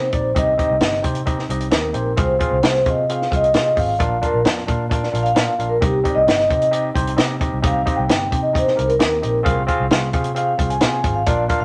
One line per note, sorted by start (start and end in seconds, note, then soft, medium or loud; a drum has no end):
0.00 0.33 C5 medium
0.12 0.32 A#1 medium
0.12 0.30 C4 medium
0.12 0.30 D#4 medium
0.12 0.30 G4 medium
0.12 0.30 D5 medium
0.12 kick medium
0.12 closed hi-hat medium
0.35 0.55 C2 medium
0.35 1.00 C3 medium
0.35 0.52 C4 medium
0.35 0.53 D#4 medium
0.35 0.53 G4 medium
0.35 0.53 D#5 loud
0.35 1.01 D#5 medium
0.35 kick loud
0.35 closed hi-hat medium
0.58 0.75 C4 medium
0.58 0.76 D#4 medium
0.58 0.76 G4 medium
0.58 0.76 D#5 loud
0.58 kick medium
0.58 closed hi-hat medium
0.70 0.80 C2 loud
0.81 1.01 G1 medium
0.81 0.98 C4 medium
0.81 0.98 D#4 medium
0.81 0.99 G4 medium
0.81 0.99 D#5 medium
0.81 snare loud
0.81 closed hi-hat medium
0.93 snare soft
1.03 1.43 C3 medium
1.03 1.21 C4 medium
1.03 1.20 D#4 medium
1.03 1.21 G4 medium
1.03 1.21 C5 medium
1.03 kick medium
1.03 closed hi-hat medium
1.15 closed hi-hat medium
1.26 1.44 C4 loud
1.26 1.44 D#4 medium
1.26 1.44 G4 medium
1.26 1.44 D#5 loud
1.26 kick medium
1.26 closed hi-hat medium
1.39 snare soft
1.49 1.69 C2 medium
1.49 1.67 C4 medium
1.49 1.67 D#4 medium
1.49 1.67 G4 medium
1.49 1.68 D#5 loud
1.49 closed hi-hat medium
1.60 closed hi-hat medium
1.71 1.92 D#2 loud
1.71 1.89 C4 medium
1.71 1.89 D#4 medium
1.71 1.89 G4 medium
1.71 1.89 D#5 medium
1.71 snare loud
1.71 closed hi-hat medium
1.75 2.16 A#4 medium
1.93 2.14 A#1 medium
1.93 2.11 C4 medium
1.93 2.12 D#4 medium
1.93 2.12 G4 medium
1.93 2.12 C5 medium
1.93 closed hi-hat medium
2.16 2.38 C2 loud
2.16 2.82 C3 medium
2.16 2.34 C4 medium
2.16 2.34 F4 medium
2.16 2.35 G#4 medium
2.16 2.35 F5 loud
2.16 kick loud
2.16 closed hi-hat loud
2.21 2.65 C5 medium
2.39 2.57 C4 medium
2.39 2.57 F4 medium
2.39 2.58 G#4 medium
2.39 2.58 F5 loud
2.39 kick medium
2.39 closed hi-hat medium
2.52 2.62 C2 loud
2.62 2.83 C2 medium
2.62 2.80 C4 medium
2.62 2.80 F4 medium
2.62 2.81 G#4 medium
2.62 2.88 C5 loud
2.62 2.81 F5 medium
2.62 snare loud
2.62 closed hi-hat medium
2.75 snare soft
2.86 3.25 C3 loud
2.86 3.03 C4 medium
2.86 3.03 F4 medium
2.86 3.03 G#4 medium
2.86 3.04 F5 medium
2.86 kick medium
2.86 closed hi-hat medium
3.09 3.26 C4 medium
3.09 3.26 F4 medium
3.09 3.26 G#4 medium
3.09 3.27 F5 medium
3.09 3.33 F5 loud
3.09 closed hi-hat medium
3.22 snare soft
3.30 3.56 C2 medium
3.30 3.48 C4 medium
3.30 3.48 F4 medium
3.30 3.49 G#4 medium
3.30 3.49 F5 medium
3.30 kick medium
3.30 closed hi-hat medium
3.35 3.45 D#5 loud
3.44 closed hi-hat medium
3.53 3.74 C3 medium
3.53 3.71 C4 medium
3.53 3.71 F4 medium
3.53 3.72 G#4 medium
3.53 3.72 F5 medium
3.53 snare medium
3.53 closed hi-hat medium
3.75 3.97 G#1 medium
3.75 3.94 C4 medium
3.75 3.94 F4 medium
3.75 3.94 G#4 medium
3.75 3.94 F5 medium
3.75 kick medium
3.75 open hi-hat medium
3.80 4.26 F5 loud
3.99 4.20 A#1 loud
3.99 4.64 A#2 medium
3.99 4.17 D4 medium
3.99 4.17 F4 medium
3.99 4.17 A#4 medium
3.99 4.17 F5 loud
3.99 kick loud
3.99 closed hi-hat medium
4.22 4.39 D4 medium
4.22 4.40 F4 medium
4.22 4.40 A#4 medium
4.22 4.45 A#4 medium
4.22 4.40 F5 loud
4.22 kick medium
4.22 closed hi-hat medium
4.34 4.44 A#1 medium
4.44 4.62 D4 medium
4.44 4.62 F4 medium
4.44 4.62 A#4 medium
4.44 4.63 F5 medium
4.44 snare loud
4.44 closed hi-hat medium
4.57 snare soft
4.67 5.07 A#2 medium
4.67 4.85 D4 medium
4.67 4.85 F4 medium
4.67 4.85 A#4 medium
4.67 4.85 F5 medium
4.67 kick loud
4.67 closed hi-hat medium
4.90 5.07 D4 medium
4.90 5.08 F4 medium
4.90 5.08 A#4 medium
4.90 5.23 D5 loud
4.90 5.08 F5 medium
4.90 kick medium
4.90 closed hi-hat medium
5.03 snare soft
5.12 5.33 A#1 medium
5.12 5.30 D4 medium
5.12 5.31 F4 medium
5.12 5.31 A#4 medium
5.12 5.31 F5 medium
5.12 closed hi-hat medium
5.23 5.37 F5 loud
5.23 closed hi-hat medium
5.35 5.47 A#2 medium
5.35 5.53 D4 medium
5.35 5.53 F4 medium
5.35 5.53 A#4 medium
5.35 5.53 F5 medium
5.35 snare loud
5.35 closed hi-hat medium
5.58 5.79 A#1 medium
5.58 5.76 D4 medium
5.58 5.76 F4 medium
5.58 5.76 A#4 medium
5.58 5.77 F5 medium
5.58 closed hi-hat medium
5.69 5.75 A#4 medium
5.80 6.02 C2 loud
5.80 6.46 C3 medium
5.80 5.98 C4 medium
5.80 5.99 D#4 medium
5.80 5.99 G4 medium
5.80 5.99 D#5 loud
5.80 kick loud
5.80 closed hi-hat medium
5.84 6.07 G4 medium
6.04 6.21 C4 medium
6.04 6.21 D#4 medium
6.04 6.22 G4 medium
6.04 6.22 D#5 loud
6.04 kick medium
6.04 closed hi-hat medium
6.08 6.14 D5 medium
6.15 6.26 C2 loud
6.15 6.78 D#5 loud
6.27 6.47 G1 medium
6.27 6.44 C4 medium
6.27 6.44 D#4 medium
6.27 6.45 G4 medium
6.27 6.45 D#5 medium
6.27 snare loud
6.27 closed hi-hat medium
6.40 snare soft
6.49 6.89 C3 medium
6.49 6.67 C4 medium
6.49 6.67 D#4 medium
6.49 6.67 G4 medium
6.49 6.68 D#5 medium
6.49 kick loud
6.49 closed hi-hat medium
6.62 closed hi-hat medium
6.71 6.89 C4 medium
6.71 6.89 D#4 medium
6.71 6.90 G4 medium
6.71 6.90 D#5 loud
6.71 closed hi-hat medium
6.94 7.15 C2 medium
6.94 7.12 C4 medium
6.94 7.12 D#4 medium
6.94 7.13 G4 medium
6.94 7.13 C5 loud
6.94 kick medium
6.94 closed hi-hat medium
7.07 closed hi-hat medium
7.16 7.47 C3 loud
7.16 7.34 C4 medium
7.16 7.35 D#4 medium
7.16 7.35 G4 loud
7.16 7.35 D#5 loud
7.16 snare loud
7.16 closed hi-hat medium
7.40 7.58 C4 medium
7.40 7.58 D#4 medium
7.40 7.58 G4 medium
7.40 7.58 D#5 medium
7.40 kick medium
7.40 closed hi-hat medium
7.53 7.63 C2 medium
7.62 7.83 C2 loud
7.62 8.28 C3 medium
7.62 7.80 C4 medium
7.62 7.80 D#4 medium
7.62 7.81 G4 medium
7.62 7.81 D#5 loud
7.62 7.96 F5 loud
7.62 kick loud
7.62 closed hi-hat medium
7.85 8.03 C4 loud
7.85 8.03 D#4 medium
7.85 8.03 G4 medium
7.85 8.04 D#5 loud
7.85 kick medium
7.85 closed hi-hat medium
7.96 8.08 C2 loud
7.96 8.10 G5 loud
8.08 8.30 G1 medium
8.08 8.26 C4 medium
8.08 8.26 D#4 medium
8.08 8.26 G4 medium
8.08 8.27 D#5 medium
8.08 8.38 G5 loud
8.08 snare loud
8.08 closed hi-hat medium
8.31 8.71 C3 medium
8.31 8.48 C4 medium
8.31 8.49 D#4 medium
8.31 8.49 G4 medium
8.31 8.49 D#5 medium
8.31 kick medium
8.31 closed hi-hat medium
8.42 8.49 D#5 medium
8.53 8.71 C4 medium
8.53 8.71 D#4 medium
8.53 8.72 G4 medium
8.53 8.72 D#5 medium
8.53 kick loud
8.53 closed hi-hat medium
8.57 8.84 C5 medium
8.67 snare soft
8.75 8.98 C2 medium
8.75 8.94 C4 medium
8.75 8.94 D#4 medium
8.75 8.94 G4 medium
8.75 8.94 A#4 medium
8.75 closed hi-hat medium
8.88 9.51 A#4 medium
8.88 closed hi-hat medium
8.99 9.20 D#2 medium
8.99 9.17 C4 medium
8.99 9.17 D#4 medium
8.99 9.17 G4 medium
8.99 9.17 D#5 medium
8.99 snare loud
8.99 closed hi-hat loud
9.21 9.43 A#1 medium
9.21 9.39 C4 medium
9.21 9.39 D#4 medium
9.21 9.40 G4 medium
9.21 9.40 D#5 medium
9.21 closed hi-hat medium
9.43 9.65 C2 loud
9.43 10.09 C3 medium
9.43 9.62 C4 loud
9.43 9.62 F4 loud
9.43 9.62 G#4 loud
9.43 9.62 F5 loud
9.43 kick loud
9.43 closed hi-hat medium
9.67 9.85 C4 loud
9.67 9.85 F4 loud
9.67 9.85 G#4 loud
9.67 9.85 F5 loud
9.67 kick medium
9.67 closed hi-hat medium
9.80 9.90 C2 loud
9.91 10.11 C2 medium
9.91 10.08 C4 medium
9.91 10.08 F4 medium
9.91 10.08 G#4 medium
9.91 10.08 F5 loud
9.91 snare loud
9.91 closed hi-hat medium
10.13 10.53 C3 loud
10.13 10.30 C4 medium
10.13 10.31 F4 medium
10.13 10.31 G#4 medium
10.13 10.31 F5 medium
10.13 kick loud
10.13 closed hi-hat medium
10.24 closed hi-hat medium
10.35 10.53 C4 medium
10.35 10.53 F4 medium
10.35 10.53 G#4 medium
10.35 10.53 F5 medium
10.35 10.69 F5 loud
10.35 closed hi-hat medium
10.58 10.84 C2 medium
10.58 10.76 C4 medium
10.58 10.76 F4 medium
10.58 10.76 G#4 medium
10.58 10.76 F5 medium
10.58 kick medium
10.58 closed hi-hat medium
10.70 10.83 G#5 loud
10.70 closed hi-hat medium
10.80 11.02 C3 medium
10.80 10.98 C4 medium
10.80 10.98 F4 medium
10.80 10.99 G#4 medium
10.80 10.99 F5 medium
10.80 snare loud
10.80 closed hi-hat medium
11.03 11.24 G#1 medium
11.03 11.21 C4 medium
11.03 11.21 F4 medium
11.03 11.21 G#4 medium
11.03 11.21 F5 medium
11.03 kick loud
11.03 closed hi-hat medium
11.14 11.29 F5 loud
11.26 11.46 A#1 loud
11.26 11.65 A#2 medium
11.26 11.44 D4 loud
11.26 11.44 F4 medium
11.26 11.44 A#4 medium
11.26 11.60 D5 medium
11.26 11.45 F5 loud
11.26 kick loud
11.26 closed hi-hat medium
11.48 11.65 D4 medium
11.48 11.65 F4 medium
11.48 11.65 A#4 medium
11.48 11.65 F5 loud
11.48 kick medium
11.48 closed hi-hat medium
11.60 11.65 A#1 loud
11.60 11.65 F5 medium